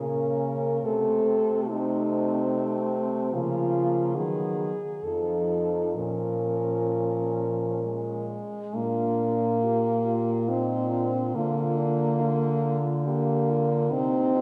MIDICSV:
0, 0, Header, 1, 5, 480
1, 0, Start_track
1, 0, Key_signature, -5, "minor"
1, 0, Tempo, 854701
1, 473, Time_signature, 3, 2, 24, 8
1, 951, Tempo, 824176
1, 2391, Tempo, 882353
1, 2871, Tempo, 925926
1, 4791, Key_signature, -2, "major"
1, 4791, Tempo, 862069
1, 7944, End_track
2, 0, Start_track
2, 0, Title_t, "French horn"
2, 0, Program_c, 0, 60
2, 0, Note_on_c, 0, 70, 55
2, 481, Note_on_c, 0, 69, 67
2, 489, Note_off_c, 0, 70, 0
2, 955, Note_on_c, 0, 63, 58
2, 964, Note_off_c, 0, 69, 0
2, 1674, Note_off_c, 0, 63, 0
2, 1900, Note_on_c, 0, 65, 66
2, 2383, Note_on_c, 0, 68, 63
2, 2391, Note_off_c, 0, 65, 0
2, 2863, Note_on_c, 0, 69, 50
2, 2871, Note_off_c, 0, 68, 0
2, 3342, Note_off_c, 0, 69, 0
2, 3345, Note_on_c, 0, 70, 52
2, 4534, Note_off_c, 0, 70, 0
2, 4784, Note_on_c, 0, 62, 40
2, 5250, Note_off_c, 0, 62, 0
2, 5277, Note_on_c, 0, 65, 43
2, 5515, Note_on_c, 0, 67, 39
2, 5523, Note_off_c, 0, 65, 0
2, 5747, Note_off_c, 0, 67, 0
2, 5750, Note_on_c, 0, 65, 42
2, 6224, Note_off_c, 0, 65, 0
2, 6229, Note_on_c, 0, 65, 42
2, 7190, Note_on_c, 0, 62, 41
2, 7199, Note_off_c, 0, 65, 0
2, 7663, Note_off_c, 0, 62, 0
2, 7667, Note_on_c, 0, 63, 48
2, 7907, Note_on_c, 0, 65, 50
2, 7916, Note_off_c, 0, 63, 0
2, 7944, Note_off_c, 0, 65, 0
2, 7944, End_track
3, 0, Start_track
3, 0, Title_t, "French horn"
3, 0, Program_c, 1, 60
3, 0, Note_on_c, 1, 61, 45
3, 473, Note_on_c, 1, 60, 48
3, 481, Note_off_c, 1, 61, 0
3, 950, Note_off_c, 1, 60, 0
3, 954, Note_on_c, 1, 60, 54
3, 1908, Note_on_c, 1, 58, 52
3, 1917, Note_off_c, 1, 60, 0
3, 2394, Note_on_c, 1, 59, 43
3, 2402, Note_off_c, 1, 58, 0
3, 2715, Note_off_c, 1, 59, 0
3, 2871, Note_on_c, 1, 63, 43
3, 3357, Note_on_c, 1, 61, 39
3, 3364, Note_off_c, 1, 63, 0
3, 4624, Note_off_c, 1, 61, 0
3, 4791, Note_on_c, 1, 65, 50
3, 5281, Note_on_c, 1, 67, 44
3, 5289, Note_off_c, 1, 65, 0
3, 5517, Note_off_c, 1, 67, 0
3, 5521, Note_on_c, 1, 65, 44
3, 5755, Note_on_c, 1, 63, 46
3, 5763, Note_off_c, 1, 65, 0
3, 5992, Note_on_c, 1, 62, 44
3, 6000, Note_off_c, 1, 63, 0
3, 6233, Note_off_c, 1, 62, 0
3, 6236, Note_on_c, 1, 65, 47
3, 6478, Note_on_c, 1, 62, 44
3, 6487, Note_off_c, 1, 65, 0
3, 6716, Note_on_c, 1, 65, 51
3, 6724, Note_off_c, 1, 62, 0
3, 7192, Note_on_c, 1, 67, 52
3, 7200, Note_off_c, 1, 65, 0
3, 7433, Note_on_c, 1, 65, 49
3, 7442, Note_off_c, 1, 67, 0
3, 7672, Note_on_c, 1, 63, 54
3, 7680, Note_off_c, 1, 65, 0
3, 7944, Note_off_c, 1, 63, 0
3, 7944, End_track
4, 0, Start_track
4, 0, Title_t, "French horn"
4, 0, Program_c, 2, 60
4, 0, Note_on_c, 2, 58, 39
4, 477, Note_on_c, 2, 57, 47
4, 485, Note_off_c, 2, 58, 0
4, 950, Note_off_c, 2, 57, 0
4, 953, Note_on_c, 2, 57, 50
4, 1892, Note_off_c, 2, 57, 0
4, 1901, Note_on_c, 2, 53, 50
4, 2390, Note_on_c, 2, 54, 43
4, 2398, Note_off_c, 2, 53, 0
4, 2714, Note_off_c, 2, 54, 0
4, 2876, Note_on_c, 2, 53, 41
4, 3331, Note_off_c, 2, 53, 0
4, 3354, Note_on_c, 2, 53, 35
4, 4298, Note_off_c, 2, 53, 0
4, 4319, Note_on_c, 2, 56, 46
4, 4792, Note_on_c, 2, 58, 58
4, 4800, Note_off_c, 2, 56, 0
4, 5758, Note_on_c, 2, 60, 58
4, 5766, Note_off_c, 2, 58, 0
4, 6237, Note_on_c, 2, 58, 65
4, 6246, Note_off_c, 2, 60, 0
4, 7096, Note_off_c, 2, 58, 0
4, 7191, Note_on_c, 2, 58, 61
4, 7671, Note_on_c, 2, 60, 75
4, 7679, Note_off_c, 2, 58, 0
4, 7944, Note_off_c, 2, 60, 0
4, 7944, End_track
5, 0, Start_track
5, 0, Title_t, "French horn"
5, 0, Program_c, 3, 60
5, 0, Note_on_c, 3, 49, 37
5, 464, Note_off_c, 3, 49, 0
5, 467, Note_on_c, 3, 48, 46
5, 1908, Note_on_c, 3, 49, 50
5, 1917, Note_off_c, 3, 48, 0
5, 2390, Note_on_c, 3, 51, 46
5, 2399, Note_off_c, 3, 49, 0
5, 2714, Note_off_c, 3, 51, 0
5, 2868, Note_on_c, 3, 41, 38
5, 3347, Note_on_c, 3, 46, 36
5, 3354, Note_off_c, 3, 41, 0
5, 4619, Note_off_c, 3, 46, 0
5, 4789, Note_on_c, 3, 46, 47
5, 6235, Note_on_c, 3, 50, 43
5, 6243, Note_off_c, 3, 46, 0
5, 7666, Note_off_c, 3, 50, 0
5, 7670, Note_on_c, 3, 48, 50
5, 7944, Note_off_c, 3, 48, 0
5, 7944, End_track
0, 0, End_of_file